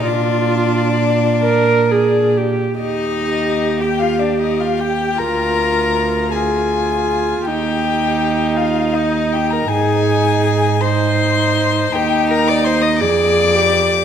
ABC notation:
X:1
M:6/8
L:1/16
Q:3/8=53
K:Eb
V:1 name="Violin"
d8- d2 z2 | e4- e g f d e f g2 | b6 a6 | g6 f2 e2 g b |
a6 c'6 | g2 b d' c' e' d'6 |]
V:2 name="Violin"
D8- D2 z2 | E4- E G F D E F G2 | B6 A6 | G6 F2 E2 G B |
A6 c6 | G2 B d c e d6 |]
V:3 name="Viola"
F6 B2 A2 G2 | G12 | F6 F6 | E12 |
E6 E6 | E6 A3 G3 |]
V:4 name="Cello" clef=bass
B,,8- B,,3 z | E,,12 | D,,12 | E,,12 |
A,,12 | E,,6 F,,6 |]